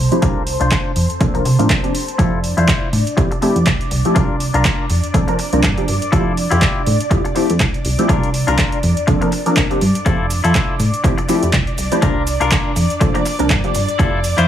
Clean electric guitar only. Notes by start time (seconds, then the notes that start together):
0.22 D4 F4 A#4
0.60 D4 F4 C5
1.20 muted clean electric guitar stroke
1.34 muted clean electric guitar stroke
1.45 muted clean electric guitar stroke
2.18 E4 F4 A4
2.57 E4 F4 C5
3.17 muted clean electric guitar stroke
3.31 muted clean electric guitar stroke
3.42 muted clean electric guitar stroke
4.15 D4 F4 A#4
4.54 D4 F4 A#4
5.14 muted clean electric guitar stroke
5.28 muted clean electric guitar stroke
5.38 muted clean electric guitar stroke
6.12 E4 F4 A4
6.51 E4 F4 G4
7.10 muted clean electric guitar stroke
7.25 muted clean electric guitar stroke
7.35 muted clean electric guitar stroke
8.09 D4 F4 A#4
8.47 D4 F4 A#4
9.07 muted clean electric guitar stroke
9.21 muted clean electric guitar stroke
9.32 muted clean electric guitar stroke
10.06 E4 F4 A4
10.44 E4 F4 A4
11.04 muted clean electric guitar stroke
11.18 muted clean electric guitar stroke
11.28 muted clean electric guitar stroke
12.02 D4 F4 A#4
12.40 D4 F4 A#4
13.00 muted clean electric guitar stroke
13.14 muted clean electric guitar stroke
13.25 muted clean electric guitar stroke
13.99 E4 F4 A4
14.38 E4 F4 C5